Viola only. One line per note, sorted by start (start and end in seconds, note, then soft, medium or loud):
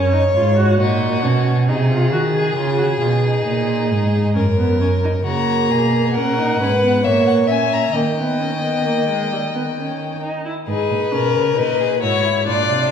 0.00 0.13 C#4 medium
0.13 0.21 D#4 medium
0.35 0.57 F4 medium
0.58 0.79 F#4 medium
0.81 1.25 D#4 medium
1.24 1.70 C#4 medium
1.69 1.91 D#4 medium
1.91 2.12 F4 medium
2.12 2.20 F#4 medium
2.34 2.56 G#4 medium
2.57 2.77 F4 medium
2.78 2.86 F#4 medium
3.01 3.09 F4 medium
3.23 4.33 D#4 medium
4.35 4.43 C#4 medium
4.58 4.80 B3 medium
4.81 4.89 C#4 medium
5.04 5.12 D#4 medium
5.26 6.18 A#3 medium
6.17 6.40 C#4 medium
6.39 6.61 D#4 medium
6.62 6.70 C#4 medium
6.83 7.05 B3 medium
7.06 7.49 A#3 medium
7.50 7.94 C#4 medium
7.95 8.03 A#3 medium
8.18 8.42 B3 soft
8.40 8.63 C#4 medium
8.64 8.88 B3 soft
8.86 9.09 A#3 medium
9.09 9.31 G#3 medium
9.32 9.40 G3 soft
9.55 9.63 B3 medium
9.77 10.22 C#4 medium
10.23 10.45 D#4 medium
10.45 10.53 E4 medium
10.68 11.13 D#4 medium
11.12 11.56 C#4 medium
11.57 12.01 D#4 medium
12.03 12.46 E4 medium
12.49 12.91 D4 medium